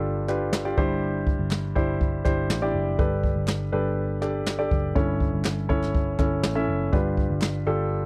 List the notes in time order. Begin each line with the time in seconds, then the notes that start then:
Already playing: G1 G2 D4 F4 G4 A4 B4
0.28 D4 F4 G4 B4, clap
0.53 snare, clap
0.65 D4 F4 G4 D5
0.78 G1 G2 D4 E4 G4 C5, kick
1.27 kick
1.39 G1
1.51 snare, clap
1.75 G1 D4 E4 G4 C5, kick
2.01 kick
2.25 G1 D4 E4 G4 C5, kick, clap
2.50 A1, snare, clap
2.62 D4 E4 G4 D5
2.74 F#1
2.99 G1 G2 D4 G4 A4 B4, kick
3.24 kick
3.36 G1
3.47 snare, clap
3.72 G1 D4 G4 A4 B4
4.21 D4 G4 A4 D5, clap
4.47 snare, clap
4.59 D4 G4 A4 D5
4.71 F#1, kick
4.95 G1 G2 C#4 E4 A4 C#5, kick
5.20 kick
5.33 G1
5.44 snare, clap
5.69 G1 C#4 E4 A4 C#5, kick
5.82 snare
5.95 kick
6.19 G1 C#4 E4 A4 C#5, kick, clap
6.43 A1, snare, clap
6.55 C#4 E4 A4 E5
6.69 F#1
6.92 G1 G2 D4 F4 G4 B4, kick
7.17 kick
7.30 G1
7.41 snare, clap
7.66 G1 D4 F4 G4 A4